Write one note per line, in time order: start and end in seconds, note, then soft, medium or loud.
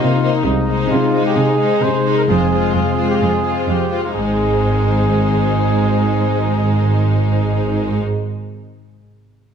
0.00 0.38 C3 soft
0.00 0.45 C3 soft
0.00 0.47 G3 soft
0.00 0.21 A#3 soft
0.00 0.29 A#3 soft
0.00 0.42 A#3 soft
0.00 2.23 C4 soft
0.00 0.14 D#4 soft
0.00 0.22 D#4 soft
0.00 2.29 D#4 soft
0.00 0.34 F4 medium
0.00 0.22 C5 soft
0.00 0.46 C5 soft
0.15 0.60 D#4 soft
0.22 0.45 A#3 soft
0.22 0.45 D#4 soft
0.22 0.45 C5 soft
0.30 0.47 A#3 soft
0.35 0.45 D#4 medium
0.45 0.83 C2 soft
0.45 0.83 C3 soft
0.45 1.35 C3 soft
0.45 3.91 G#3 soft
0.45 0.90 D#4 medium
0.61 1.05 D#4 soft
0.67 1.12 G#3 soft
0.67 1.13 D#4 soft
0.67 1.13 C5 soft
0.76 1.21 G#3 soft
0.91 1.29 C3 soft
0.91 1.24 F4 medium
0.91 1.82 G#4 soft
1.06 1.51 D#4 soft
1.13 1.58 G#3 soft
1.13 1.59 D#4 soft
1.13 1.59 C5 soft
1.22 1.66 G#3 soft
1.26 1.38 G4 medium
1.36 2.30 C3 soft
1.36 1.75 C3 medium
1.36 1.84 G#4 medium
1.53 1.97 D#4 soft
1.59 2.04 G#3 soft
1.59 2.04 D#4 soft
1.59 2.04 C5 soft
1.68 2.12 G#3 soft
1.82 2.21 C3 soft
1.82 2.43 G#4 soft
1.82 2.17 C5 medium
1.98 2.31 D#4 soft
2.05 2.27 G#3 soft
2.05 2.28 D#4 soft
2.05 2.27 C5 soft
2.14 3.04 G#3 soft
2.14 2.23 A#4 medium
2.28 2.67 F1 soft
2.28 2.67 F2 medium
2.28 4.16 F3 soft
2.28 2.50 G#3 soft
2.28 3.87 C4 soft
2.28 2.51 F4 soft
2.28 2.74 G#4 medium
2.28 2.50 C5 soft
2.44 2.74 G#4 soft
2.51 2.96 G#3 soft
2.51 2.97 F4 soft
2.51 2.96 C5 soft
2.59 2.89 C4 soft
2.75 3.14 F2 soft
2.75 3.35 G#4 soft
2.75 3.09 G#4 soft
2.90 3.20 C4 soft
2.97 3.42 G#3 soft
2.97 3.44 F4 soft
2.97 3.43 C5 soft
3.05 3.98 G#3 soft
3.10 3.15 G4 soft
3.21 3.60 F2 soft
3.21 3.51 C4 soft
3.21 3.54 G#4 soft
3.36 3.66 G#4 soft
3.44 3.90 G#3 soft
3.44 3.90 F4 soft
3.44 3.90 C5 soft
3.52 3.83 C4 soft
3.67 4.07 F2 soft
3.67 4.02 G4 soft
3.67 4.34 G#4 soft
3.84 4.27 C4 soft
3.91 4.13 G#3 soft
3.91 4.14 F4 soft
3.91 4.14 C5 soft
4.00 4.20 G#3 soft
4.00 4.14 F4 soft
4.14 8.01 G#1 soft
4.14 8.05 G#2 soft
4.14 8.01 G#2 soft
4.14 8.01 G#3 soft
4.14 8.02 G#3 soft
4.14 8.02 C4 soft
4.14 8.02 D#4 soft
4.14 8.01 G#4 soft
4.14 8.01 C5 soft
4.21 8.08 G#3 soft
4.28 8.15 C4 soft
4.36 8.22 G#4 soft
4.42 8.29 C5 soft